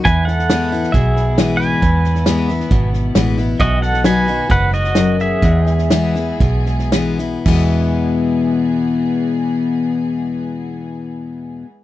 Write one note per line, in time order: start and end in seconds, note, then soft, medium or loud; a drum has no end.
0.00 7.42 B3 medium
0.05 0.85 E2 medium
0.05 0.91 E2 medium
0.05 3.56 G#2 medium
0.05 3.57 E3 medium
0.05 3.57 E4 medium
0.05 0.26 B4 medium
0.05 3.56 E5 medium
0.05 0.28 G#5 loud
0.05 kick loud
0.05 snare soft
0.25 0.90 A4 medium
0.25 0.95 F#5 loud
0.25 snare soft
0.39 snare soft
0.50 0.72 E3 loud
0.50 0.72 G#3 medium
0.50 0.72 B3 loud
0.50 0.71 E4 loud
0.50 snare loud
0.50 hi-hat pedal medium
0.72 0.94 B3 medium
0.72 0.93 E4 medium
0.72 snare soft
0.83 snare soft
0.92 1.74 B1 medium
0.92 1.79 B2 loud
0.92 1.57 G#4 medium
0.92 1.62 E5 medium
0.92 kick loud
0.92 snare soft
1.16 snare soft
1.38 1.80 E3 loud
1.38 1.81 G#3 loud
1.38 1.81 B3 loud
1.38 1.81 E4 loud
1.38 snare loud
1.38 hi-hat pedal medium
1.57 2.89 B4 medium
1.57 2.88 G#5 loud
1.57 snare soft
1.82 2.62 E2 loud
1.82 2.67 E2 medium
1.82 kick loud
1.82 snare soft
2.04 snare soft
2.15 snare soft
2.26 2.49 E3 medium
2.26 2.49 G#3 loud
2.26 2.49 B3 medium
2.26 2.48 E4 medium
2.26 snare loud
2.26 hi-hat pedal medium
2.49 2.72 B3 soft
2.49 2.71 E4 medium
2.49 snare soft
2.60 snare soft
2.71 3.09 G#1 medium
2.71 3.56 B2 loud
2.71 kick loud
2.71 snare soft
2.93 snare soft
3.15 3.53 A1 medium
3.15 3.37 E3 medium
3.15 3.37 G#3 loud
3.15 3.37 B3 loud
3.15 3.36 E4 loud
3.15 snare loud
3.15 hi-hat pedal medium
3.38 3.60 B3 medium
3.38 3.59 E4 medium
3.38 snare soft
3.59 4.40 B1 loud
3.59 4.45 B2 loud
3.59 5.40 D#3 medium
3.59 5.40 F#3 medium
3.59 5.40 F#4 medium
3.59 3.81 F#4 medium
3.59 3.83 D#5 loud
3.59 3.79 E5 medium
3.59 3.76 G#5 medium
3.59 kick loud
3.59 snare soft
3.76 5.40 D#5 medium
3.76 3.87 G5 medium
3.82 4.03 A4 medium
3.82 4.05 F#5 loud
3.82 snare soft
3.87 5.41 F#5 medium
3.94 snare soft
4.04 4.26 F#3 medium
4.04 4.26 B3 loud
4.04 4.27 D#4 medium
4.04 4.26 F#4 loud
4.04 4.47 B4 medium
4.04 4.51 G#5 loud
4.04 snare loud
4.04 hi-hat pedal medium
4.27 4.50 D#4 soft
4.27 4.49 F#4 medium
4.27 snare soft
4.49 5.33 F#1 medium
4.49 4.93 G#2 loud
4.49 4.72 B4 medium
4.49 4.74 F#5 loud
4.49 kick loud
4.49 snare soft
4.73 5.16 F#4 medium
4.73 5.21 D#5 loud
4.73 snare soft
4.84 snare soft
4.95 5.40 F#2 medium
4.95 snare loud
4.95 hi-hat pedal medium
5.19 6.90 G#4 medium
5.19 6.89 E5 loud
5.19 snare soft
5.42 6.30 E2 loud
5.42 6.35 E2 loud
5.42 7.44 E3 medium
5.42 7.44 G#3 medium
5.42 7.44 G#4 medium
5.42 5.67 D#5 medium
5.42 5.62 F#5 medium
5.42 kick loud
5.42 snare soft
5.62 5.73 G5 medium
5.66 7.45 E5 medium
5.66 snare soft
5.73 7.45 G#5 medium
5.78 snare soft
5.90 6.14 E3 medium
5.90 6.15 G#3 medium
5.90 6.15 B3 loud
5.90 6.14 E4 loud
5.90 snare loud
5.90 hi-hat pedal medium
6.15 6.40 B3 soft
6.15 6.39 E4 medium
6.15 snare soft
6.40 7.35 B1 medium
6.40 7.41 B2 loud
6.40 kick loud
6.40 snare soft
6.66 snare soft
6.79 snare soft
6.92 7.18 E3 medium
6.92 7.18 G#3 loud
6.92 7.18 B3 loud
6.92 7.18 E4 loud
6.92 snare loud
6.92 hi-hat pedal medium
7.18 7.46 B3 soft
7.18 7.45 E4 medium
7.18 snare soft
7.46 11.59 E2 loud
7.46 11.63 E2 medium
7.46 11.64 B2 medium
7.46 11.59 E3 medium
7.46 11.65 E3 medium
7.46 11.59 G#3 medium
7.46 11.65 G#3 medium
7.46 11.59 B3 medium
7.46 11.65 B3 loud
7.46 11.66 E4 medium
7.46 11.59 G#4 medium
7.46 11.59 E5 medium
7.46 11.60 G#5 medium
7.46 kick loud
7.46 crash medium